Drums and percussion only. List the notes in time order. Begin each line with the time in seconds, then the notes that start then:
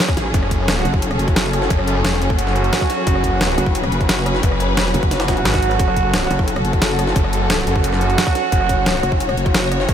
0.08 kick, cross-stick, closed hi-hat
0.17 snare, closed hi-hat
0.34 kick, closed hi-hat
0.43 cross-stick
0.51 kick, closed hi-hat
0.68 snare, closed hi-hat
0.85 cross-stick, closed hi-hat
0.94 kick
1.02 closed hi-hat
1.11 cross-stick, closed hi-hat
1.19 closed hi-hat
1.28 kick, closed hi-hat
1.36 snare, closed hi-hat
1.53 cross-stick, closed hi-hat
1.62 snare
1.70 kick, closed hi-hat
1.79 cross-stick
1.87 closed hi-hat
2.05 snare, closed hi-hat
2.13 snare
2.22 closed hi-hat
2.30 kick
2.39 closed hi-hat
2.47 snare
2.56 closed hi-hat
2.64 closed hi-hat
2.73 snare, closed hi-hat, open hi-hat
2.81 kick, cross-stick
2.90 snare, closed hi-hat
3.07 kick, closed hi-hat
3.15 cross-stick
3.24 kick, closed hi-hat
3.41 snare, closed hi-hat
3.58 cross-stick, closed hi-hat
3.66 kick
3.75 closed hi-hat
3.83 cross-stick, closed hi-hat
3.92 closed hi-hat
4.01 kick, closed hi-hat
4.09 snare, closed hi-hat
4.26 cross-stick, closed hi-hat
4.35 snare
4.43 kick, closed hi-hat
4.52 cross-stick
4.60 closed hi-hat
4.77 snare, closed hi-hat
4.86 snare
4.94 closed hi-hat
5.03 kick, closed hi-hat
5.11 snare, closed hi-hat
5.20 snare, closed hi-hat
5.28 kick, snare, closed hi-hat
5.37 closed hi-hat
5.45 snare, closed hi-hat
5.54 kick, cross-stick, snare, closed hi-hat
5.62 closed hi-hat
5.71 closed hi-hat
5.79 kick, closed hi-hat
5.88 cross-stick
5.96 kick, closed hi-hat
6.14 snare, closed hi-hat
6.31 cross-stick, closed hi-hat
6.39 kick
6.48 closed hi-hat
6.56 cross-stick, closed hi-hat
6.65 closed hi-hat
6.73 kick, closed hi-hat
6.82 snare, closed hi-hat
6.99 cross-stick, closed hi-hat
7.07 snare
7.16 kick, closed hi-hat
7.24 cross-stick
7.33 closed hi-hat
7.50 snare, closed hi-hat
7.59 snare
7.67 closed hi-hat
7.76 kick
7.84 closed hi-hat
7.93 snare
8.01 closed hi-hat
8.10 closed hi-hat
8.18 snare, closed hi-hat, open hi-hat
8.27 kick, cross-stick
8.35 snare, closed hi-hat
8.52 kick, closed hi-hat
8.61 cross-stick
8.69 kick, closed hi-hat
8.86 snare, closed hi-hat
9.03 cross-stick, closed hi-hat
9.12 kick
9.20 closed hi-hat
9.29 cross-stick, closed hi-hat
9.37 closed hi-hat
9.46 kick, closed hi-hat
9.54 snare, closed hi-hat
9.72 cross-stick, closed hi-hat
9.80 snare
9.89 kick, closed hi-hat